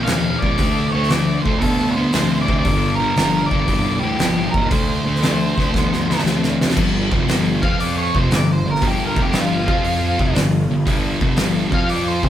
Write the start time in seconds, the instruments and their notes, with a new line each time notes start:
0.04 distorted electric guitar D#3 C#4, lead electric guitar F5, open hi-hat
0.08 picked electric bass D#2, snare
0.38 picked electric bass C#2, lead electric guitar D5, kick
0.43 distorted electric guitar D#3 C#4
0.58 picked electric bass D2, distorted electric guitar D3 A3, kick, open hi-hat
0.92 picked electric bass D2, distorted electric guitar D3 A3, lead electric guitar C#5
1.03 snare
1.09 picked electric bass D2, distorted electric guitar D3 A3, lead electric guitar D5, snare, open hi-hat
1.42 picked electric bass D2, distorted electric guitar D3 A3, lead electric guitar C5, kick
1.58 picked electric bass D2, distorted electric guitar D3 B3, lead electric guitar A4, kick, open hi-hat
1.91 lead electric guitar C5
1.96 distorted electric guitar D3 B3
2.13 picked electric bass D2, distorted electric guitar D3 C4, snare, open hi-hat
2.41 lead electric guitar D5
2.47 distorted electric guitar D3 C4, kick
2.59 lead electric guitar D5
2.65 picked electric bass G1, distorted electric guitar G2 D3, kick, open hi-hat
2.95 lead electric guitar A#4
3.00 distorted electric guitar G2 D3
3.16 picked electric bass G1, distorted electric guitar G2 D3, snare, open hi-hat
3.46 distorted electric guitar G2, lead electric guitar D5
3.51 picked electric bass G1, distorted electric guitar D3, kick
3.68 picked electric bass G1, distorted electric guitar G2 E3, kick, open hi-hat
3.99 picked electric bass D2, distorted electric guitar G2 E3, lead electric guitar G4
4.19 picked electric bass G1, distorted electric guitar G2 F3, snare, open hi-hat
4.51 picked electric bass D#2, lead electric guitar A#4, kick
4.57 distorted electric guitar G2 F3
4.69 picked electric bass D2, distorted electric guitar D3 A3, lead electric guitar C5, kick, open hi-hat
5.04 picked electric bass D2, distorted electric guitar D3 A3
5.16 snare
5.22 picked electric bass D2, distorted electric guitar D3 A3, snare, open hi-hat
5.58 picked electric bass D2, distorted electric guitar D3 A3, kick, snare
5.74 picked electric bass D2, distorted electric guitar D3 B3, kick, snare
5.93 snare
6.10 distorted electric guitar D3 B3, snare
6.19 snare
6.24 picked electric bass D2, distorted electric guitar D3 C4, snare
6.43 snare
6.61 distorted electric guitar D3 C4, snare
6.70 snare
6.76 picked electric bass G1, distorted electric guitar G2 D3 G3, kick, crash
7.12 picked electric bass F1, distorted electric guitar F2 C3 F3, kick
7.28 picked electric bass G1, distorted electric guitar G2 D3 G3, snare, open hi-hat
7.62 picked electric bass F2, distorted electric guitar F3 C4 F4, lead electric guitar F5, kick
7.80 lead electric guitar D5, open hi-hat
7.98 lead electric guitar C#5
8.15 picked electric bass F1, distorted electric guitar F2 C3 F3, lead electric guitar C5, kick
8.31 picked electric bass G1, distorted electric guitar G2 D3, snare, open hi-hat
8.35 lead electric guitar D5
8.53 lead electric guitar C5
8.66 picked electric bass G1, distorted electric guitar G2 D3
8.71 lead electric guitar A#4
8.75 snare
8.82 picked electric bass G1, distorted electric guitar G2 D3 G3, kick, open hi-hat
8.87 lead electric guitar G4
9.05 lead electric guitar A#4
9.16 picked electric bass F1, distorted electric guitar F2 C3 F3, kick
9.22 lead electric guitar G4
9.33 picked electric bass G1, distorted electric guitar G2 D3 G3, snare, open hi-hat
9.40 lead electric guitar F4
9.68 picked electric bass F2, distorted electric guitar F3 C4 F4, kick
9.84 open hi-hat
10.19 picked electric bass F1, distorted electric guitar F2 C3 F3, kick
10.34 picked electric bass G1, distorted electric guitar G2 D3, snare, open hi-hat
10.70 picked electric bass G1, distorted electric guitar G2 D3
10.86 picked electric bass G1, distorted electric guitar G2 D3 G3, kick, open hi-hat
11.20 picked electric bass F1, distorted electric guitar F2 C3 F3, kick
11.37 picked electric bass G1, distorted electric guitar G2 D3 G3, snare, open hi-hat
11.71 picked electric bass F2, distorted electric guitar F3 C4 F4, lead electric guitar F5, kick
11.89 lead electric guitar D5, open hi-hat
12.08 lead electric guitar C5
12.22 picked electric bass F1, distorted electric guitar F2 C3 F3, lead electric guitar C5, kick